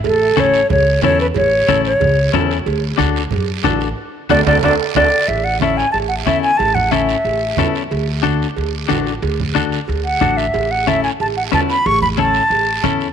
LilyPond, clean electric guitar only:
\new Staff \with { instrumentName = "Clean electric guitar" } { \time 4/4 \key a \major \tempo 4 = 183 r4 <cis' e' a'>8 r4. <cis' e' a'>8 r8 | r4 <cis' e' a'>8 r4. <cis' e' a'>8 r8 | r4 <d' fis' a'>8 r4. <d' fis' a'>8 r8 | r4 <d' fis' a'>8 <d' fis' a'>8 <d' fis' a'>8 r8 <d' fis' a'>8 r8 |
r4 <cis' e' a'>8 r4. <cis' e' a'>8 r8 | r4 <cis' e' a'>8 r4. <cis' e' a'>8 r8 | r4 <d' fis' a'>8 r4. <d' fis' a'>8 r8 | r4 <d' fis' a'>8 r4. <d' fis' a'>8 r8 |
r4 <cis' e' a'>8 r4. <cis' e' b'>8 r8 | r4 <cis' e' a'>8 r4. <cis' e' a'>8 r8 | }